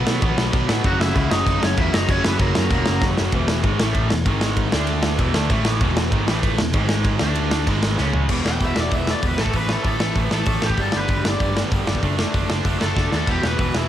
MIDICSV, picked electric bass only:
0, 0, Header, 1, 2, 480
1, 0, Start_track
1, 0, Key_signature, 4, "major"
1, 0, Tempo, 310881
1, 1308, Time_signature, 4, 2, 24, 8
1, 21437, End_track
2, 0, Start_track
2, 0, Title_t, "Picked electric bass"
2, 0, Program_c, 0, 34
2, 106, Note_on_c, 0, 47, 91
2, 279, Note_off_c, 0, 47, 0
2, 344, Note_on_c, 0, 33, 108
2, 517, Note_off_c, 0, 33, 0
2, 583, Note_on_c, 0, 35, 93
2, 757, Note_off_c, 0, 35, 0
2, 831, Note_on_c, 0, 35, 94
2, 1001, Note_off_c, 0, 35, 0
2, 1064, Note_on_c, 0, 45, 102
2, 1237, Note_off_c, 0, 45, 0
2, 1303, Note_on_c, 0, 30, 104
2, 1476, Note_off_c, 0, 30, 0
2, 1536, Note_on_c, 0, 30, 107
2, 1712, Note_off_c, 0, 30, 0
2, 1791, Note_on_c, 0, 37, 93
2, 1961, Note_off_c, 0, 37, 0
2, 2021, Note_on_c, 0, 30, 105
2, 2195, Note_off_c, 0, 30, 0
2, 2263, Note_on_c, 0, 30, 109
2, 2436, Note_off_c, 0, 30, 0
2, 2515, Note_on_c, 0, 30, 91
2, 2684, Note_off_c, 0, 30, 0
2, 2739, Note_on_c, 0, 40, 99
2, 2913, Note_off_c, 0, 40, 0
2, 2997, Note_on_c, 0, 30, 97
2, 3165, Note_off_c, 0, 30, 0
2, 3224, Note_on_c, 0, 30, 99
2, 3397, Note_off_c, 0, 30, 0
2, 3472, Note_on_c, 0, 30, 96
2, 3642, Note_off_c, 0, 30, 0
2, 3697, Note_on_c, 0, 30, 84
2, 3872, Note_off_c, 0, 30, 0
2, 3973, Note_on_c, 0, 42, 99
2, 4135, Note_off_c, 0, 42, 0
2, 4187, Note_on_c, 0, 28, 110
2, 4359, Note_off_c, 0, 28, 0
2, 4445, Note_on_c, 0, 30, 92
2, 4610, Note_off_c, 0, 30, 0
2, 4664, Note_on_c, 0, 30, 93
2, 4837, Note_off_c, 0, 30, 0
2, 4928, Note_on_c, 0, 30, 98
2, 5092, Note_off_c, 0, 30, 0
2, 5134, Note_on_c, 0, 28, 92
2, 5586, Note_off_c, 0, 28, 0
2, 5618, Note_on_c, 0, 32, 89
2, 5846, Note_off_c, 0, 32, 0
2, 5865, Note_on_c, 0, 33, 101
2, 6312, Note_off_c, 0, 33, 0
2, 6358, Note_on_c, 0, 28, 82
2, 6569, Note_off_c, 0, 28, 0
2, 6579, Note_on_c, 0, 32, 106
2, 7252, Note_off_c, 0, 32, 0
2, 7305, Note_on_c, 0, 38, 100
2, 7974, Note_off_c, 0, 38, 0
2, 8012, Note_on_c, 0, 28, 99
2, 8240, Note_off_c, 0, 28, 0
2, 8266, Note_on_c, 0, 38, 87
2, 8488, Note_off_c, 0, 38, 0
2, 8494, Note_on_c, 0, 33, 100
2, 8944, Note_off_c, 0, 33, 0
2, 8974, Note_on_c, 0, 28, 100
2, 9423, Note_off_c, 0, 28, 0
2, 9452, Note_on_c, 0, 32, 101
2, 9679, Note_off_c, 0, 32, 0
2, 9715, Note_on_c, 0, 33, 107
2, 10153, Note_off_c, 0, 33, 0
2, 10183, Note_on_c, 0, 28, 81
2, 10394, Note_off_c, 0, 28, 0
2, 10403, Note_on_c, 0, 32, 94
2, 11077, Note_off_c, 0, 32, 0
2, 11131, Note_on_c, 0, 38, 102
2, 11801, Note_off_c, 0, 38, 0
2, 11849, Note_on_c, 0, 32, 103
2, 12296, Note_off_c, 0, 32, 0
2, 12333, Note_on_c, 0, 37, 98
2, 12778, Note_off_c, 0, 37, 0
2, 12804, Note_on_c, 0, 28, 81
2, 12971, Note_off_c, 0, 28, 0
2, 13051, Note_on_c, 0, 28, 86
2, 13215, Note_off_c, 0, 28, 0
2, 13287, Note_on_c, 0, 28, 77
2, 13452, Note_off_c, 0, 28, 0
2, 13535, Note_on_c, 0, 28, 90
2, 13698, Note_off_c, 0, 28, 0
2, 13771, Note_on_c, 0, 28, 91
2, 14100, Note_off_c, 0, 28, 0
2, 14257, Note_on_c, 0, 28, 89
2, 14419, Note_off_c, 0, 28, 0
2, 14501, Note_on_c, 0, 33, 85
2, 14662, Note_off_c, 0, 33, 0
2, 14729, Note_on_c, 0, 33, 90
2, 15059, Note_off_c, 0, 33, 0
2, 15211, Note_on_c, 0, 33, 78
2, 15376, Note_off_c, 0, 33, 0
2, 15442, Note_on_c, 0, 33, 87
2, 15610, Note_off_c, 0, 33, 0
2, 15683, Note_on_c, 0, 33, 84
2, 15851, Note_off_c, 0, 33, 0
2, 15926, Note_on_c, 0, 33, 81
2, 16093, Note_off_c, 0, 33, 0
2, 16163, Note_on_c, 0, 33, 96
2, 16331, Note_off_c, 0, 33, 0
2, 16407, Note_on_c, 0, 33, 86
2, 16574, Note_off_c, 0, 33, 0
2, 16641, Note_on_c, 0, 31, 89
2, 16810, Note_off_c, 0, 31, 0
2, 16895, Note_on_c, 0, 31, 83
2, 17059, Note_off_c, 0, 31, 0
2, 17119, Note_on_c, 0, 31, 88
2, 17289, Note_off_c, 0, 31, 0
2, 17360, Note_on_c, 0, 31, 87
2, 17530, Note_off_c, 0, 31, 0
2, 17613, Note_on_c, 0, 31, 102
2, 17943, Note_off_c, 0, 31, 0
2, 18094, Note_on_c, 0, 31, 84
2, 18260, Note_off_c, 0, 31, 0
2, 18337, Note_on_c, 0, 31, 90
2, 18502, Note_off_c, 0, 31, 0
2, 18573, Note_on_c, 0, 30, 91
2, 18904, Note_off_c, 0, 30, 0
2, 19058, Note_on_c, 0, 30, 80
2, 19223, Note_off_c, 0, 30, 0
2, 19296, Note_on_c, 0, 30, 86
2, 19461, Note_off_c, 0, 30, 0
2, 19533, Note_on_c, 0, 30, 94
2, 19700, Note_off_c, 0, 30, 0
2, 19796, Note_on_c, 0, 30, 87
2, 19955, Note_off_c, 0, 30, 0
2, 20016, Note_on_c, 0, 30, 91
2, 20183, Note_off_c, 0, 30, 0
2, 20266, Note_on_c, 0, 39, 87
2, 20429, Note_off_c, 0, 39, 0
2, 20497, Note_on_c, 0, 28, 95
2, 20663, Note_off_c, 0, 28, 0
2, 20741, Note_on_c, 0, 28, 88
2, 20906, Note_off_c, 0, 28, 0
2, 20981, Note_on_c, 0, 28, 86
2, 21146, Note_off_c, 0, 28, 0
2, 21220, Note_on_c, 0, 28, 84
2, 21386, Note_off_c, 0, 28, 0
2, 21437, End_track
0, 0, End_of_file